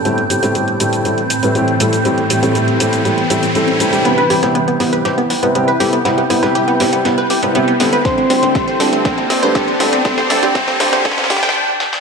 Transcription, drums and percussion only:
0.05 closed hi-hat soft
0.05 shaker soft
0.18 closed hi-hat soft
0.30 closed hi-hat medium
0.30 shaker medium
0.43 closed hi-hat medium
0.43 shaker soft
0.55 closed hi-hat medium
0.55 shaker soft
0.68 closed hi-hat soft
0.80 closed hi-hat medium
0.80 shaker medium
0.93 closed hi-hat medium
0.93 shaker soft
1.05 closed hi-hat soft
1.05 shaker soft
1.18 closed hi-hat soft
1.30 closed hi-hat medium
1.30 shaker medium
1.43 closed hi-hat medium
1.43 shaker soft
1.55 closed hi-hat soft
1.55 shaker soft
1.68 closed hi-hat soft
1.80 closed hi-hat medium
1.80 shaker medium
1.93 closed hi-hat medium
1.93 shaker soft
2.05 closed hi-hat soft
2.05 shaker soft
2.18 closed hi-hat soft
2.30 closed hi-hat medium
2.30 shaker medium
2.43 closed hi-hat soft
2.43 shaker soft
2.55 closed hi-hat medium
2.55 shaker soft
2.68 closed hi-hat soft
2.80 closed hi-hat medium
2.80 shaker medium
2.93 closed hi-hat medium
2.93 shaker soft
3.05 closed hi-hat medium
3.05 shaker soft
3.18 closed hi-hat soft
3.30 closed hi-hat medium
3.30 shaker medium
3.43 closed hi-hat medium
3.43 shaker soft
3.55 closed hi-hat soft
3.55 shaker soft
3.68 closed hi-hat soft
3.80 closed hi-hat loud
3.80 shaker medium
3.93 closed hi-hat soft
3.93 shaker soft
4.05 snare soft
4.05 closed hi-hat medium
4.18 closed hi-hat soft
4.30 cross-stick medium
4.30 open hi-hat loud
4.43 cross-stick medium
4.43 snare soft
4.43 closed hi-hat medium
4.55 closed hi-hat medium
4.68 closed hi-hat soft
4.80 snare soft
4.80 open hi-hat loud
4.93 closed hi-hat medium
5.05 snare soft
5.05 closed hi-hat medium
5.18 closed hi-hat soft
5.30 open hi-hat loud
5.43 closed hi-hat medium
5.55 closed hi-hat medium
5.68 closed hi-hat soft
5.80 snare medium
5.80 open hi-hat loud
5.93 closed hi-hat medium
6.05 snare medium
6.05 closed hi-hat medium
6.18 closed hi-hat soft
6.30 cross-stick medium
6.30 open hi-hat loud
6.43 cross-stick medium
6.43 snare medium
6.43 closed hi-hat soft
6.55 closed hi-hat medium
6.68 closed hi-hat soft
6.80 snare medium
6.80 open hi-hat loud
6.93 closed hi-hat medium
7.05 snare medium
7.05 closed hi-hat medium
7.18 closed hi-hat soft
7.30 open hi-hat loud
7.43 closed hi-hat medium
7.55 closed hi-hat medium
7.68 closed hi-hat soft
7.80 snare medium
7.80 open hi-hat loud
7.93 closed hi-hat medium
8.05 kick loud
8.05 snare medium
8.05 closed hi-hat soft
8.18 closed hi-hat soft
8.30 snare medium
8.30 open hi-hat loud
8.43 closed hi-hat soft
8.55 kick loud
8.55 snare medium
8.55 closed hi-hat medium
8.68 closed hi-hat soft
8.80 snare medium
8.80 open hi-hat loud
8.93 closed hi-hat medium
9.05 kick loud
9.05 snare medium
9.05 closed hi-hat soft
9.18 closed hi-hat soft
9.30 snare medium
9.30 open hi-hat loud
9.43 closed hi-hat medium
9.55 kick loud
9.55 snare medium
9.55 closed hi-hat medium
9.68 closed hi-hat soft
9.80 snare medium
9.80 open hi-hat loud
9.93 closed hi-hat soft
10.05 kick loud
10.05 snare medium
10.05 closed hi-hat soft
10.18 snare medium
10.18 closed hi-hat soft
10.30 snare medium
10.30 open hi-hat loud
10.43 snare medium
10.43 closed hi-hat medium
10.55 kick loud
10.55 snare loud
10.55 closed hi-hat medium
10.68 snare medium
10.68 closed hi-hat soft
10.80 snare loud
10.80 open hi-hat loud
10.93 snare medium
10.93 closed hi-hat medium
11.05 kick loud
11.05 snare loud
11.05 closed hi-hat medium
11.11 snare medium
11.18 snare medium
11.18 closed hi-hat soft
11.24 snare medium
11.30 kick medium
11.30 snare loud
11.30 open hi-hat loud
11.36 snare medium
11.43 snare medium
11.43 closed hi-hat medium
11.49 snare loud
11.80 snare medium
11.93 snare medium

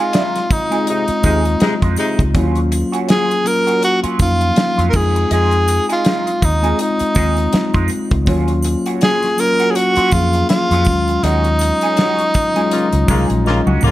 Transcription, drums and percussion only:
0.13 snare loud
0.13 closed hi-hat loud
0.13 muted triangle medium
0.36 snare soft
0.36 closed hi-hat soft
0.36 muted triangle soft
0.51 kick loud
0.51 closed hi-hat medium
0.51 triangle medium
0.72 closed hi-hat soft
0.72 muted triangle soft
0.87 closed hi-hat medium
0.87 muted triangle medium
1.08 closed hi-hat medium
1.08 muted triangle soft
1.23 kick medium
1.23 closed hi-hat medium
1.23 triangle medium
1.45 closed hi-hat soft
1.45 muted triangle soft
1.60 snare loud
1.60 closed hi-hat loud
1.60 muted triangle soft
1.82 kick medium
1.82 closed hi-hat medium
1.82 muted triangle soft
1.96 closed hi-hat medium
1.96 triangle medium
2.19 kick medium
2.19 closed hi-hat medium
2.19 muted triangle soft
2.35 kick loud
2.35 closed hi-hat loud
2.35 muted triangle soft
2.55 closed hi-hat soft
2.55 muted triangle soft
2.72 closed hi-hat medium
2.72 triangle medium
2.93 closed hi-hat medium
2.93 muted triangle soft
3.09 snare loud
3.09 closed hi-hat medium
3.09 muted triangle soft
3.31 closed hi-hat soft
3.31 muted triangle soft
3.46 closed hi-hat medium
3.46 triangle medium
3.67 closed hi-hat soft
3.67 muted triangle soft
3.83 closed hi-hat medium
3.83 muted triangle medium
4.04 closed hi-hat medium
4.04 muted triangle soft
4.19 kick medium
4.19 closed hi-hat medium
4.19 triangle medium
4.41 closed hi-hat medium
4.41 muted triangle soft
4.56 snare loud
4.56 closed hi-hat medium
4.56 muted triangle soft
4.79 closed hi-hat medium
4.79 muted triangle soft
4.93 kick loud
4.93 crash medium
4.93 triangle medium
5.16 closed hi-hat medium
5.16 muted triangle soft
5.31 closed hi-hat loud
5.31 muted triangle soft
5.51 closed hi-hat soft
5.51 muted triangle soft
5.68 closed hi-hat medium
5.68 triangle medium
5.89 closed hi-hat medium
5.89 muted triangle medium
6.05 snare loud
6.05 closed hi-hat medium
6.05 muted triangle soft
6.27 closed hi-hat soft
6.27 muted triangle soft
6.42 kick medium
6.42 closed hi-hat medium
6.42 triangle medium
6.64 closed hi-hat soft
6.64 muted triangle soft
6.79 closed hi-hat medium
6.79 muted triangle medium
6.99 closed hi-hat medium
6.99 muted triangle medium
7.15 kick medium
7.15 closed hi-hat medium
7.15 triangle medium
7.37 closed hi-hat soft
7.37 muted triangle soft
7.53 snare loud
7.53 closed hi-hat loud
7.53 muted triangle soft
7.74 kick medium
7.74 closed hi-hat medium
7.74 muted triangle soft
7.88 closed hi-hat medium
7.88 triangle medium
8.11 kick medium
8.11 closed hi-hat medium
8.11 muted triangle medium
8.26 kick loud
8.26 closed hi-hat loud
8.26 muted triangle soft
8.48 closed hi-hat medium
8.48 muted triangle soft
8.63 closed hi-hat medium
8.63 triangle medium
8.86 closed hi-hat medium
8.86 muted triangle soft
9.01 snare loud
9.01 closed hi-hat medium
9.01 muted triangle medium
9.23 snare soft
9.23 closed hi-hat soft
9.23 muted triangle soft
9.38 closed hi-hat medium
9.38 triangle medium
9.60 closed hi-hat soft
9.60 muted triangle soft
9.75 closed hi-hat medium
9.75 muted triangle medium
9.96 closed hi-hat medium
9.96 muted triangle medium
10.11 kick medium
10.11 closed hi-hat medium
10.11 triangle medium
10.33 closed hi-hat soft
10.33 muted triangle soft
10.49 snare loud
10.49 closed hi-hat loud
10.49 muted triangle soft
10.71 closed hi-hat medium
10.71 muted triangle soft
10.85 kick loud
10.85 closed hi-hat medium
10.85 triangle medium
11.08 closed hi-hat medium
11.08 muted triangle soft
11.24 closed hi-hat loud
11.24 muted triangle soft
11.44 closed hi-hat soft
11.44 muted triangle soft
11.59 closed hi-hat medium
11.59 triangle medium
11.81 closed hi-hat medium
11.81 muted triangle medium
11.97 snare loud
11.97 closed hi-hat medium
11.97 muted triangle soft
12.19 closed hi-hat soft
12.19 muted triangle medium
12.34 kick medium
12.34 closed hi-hat medium
12.34 triangle medium
12.56 closed hi-hat medium
12.56 muted triangle soft
12.71 closed hi-hat medium
12.71 muted triangle medium
12.92 closed hi-hat medium
12.92 muted triangle medium
13.08 kick medium
13.08 closed hi-hat medium
13.08 triangle medium
13.30 closed hi-hat medium
13.30 muted triangle soft
13.46 snare medium
13.46 muted triangle soft
13.67 high tom medium
13.67 muted triangle soft
13.81 mid tom medium
13.81 triangle medium

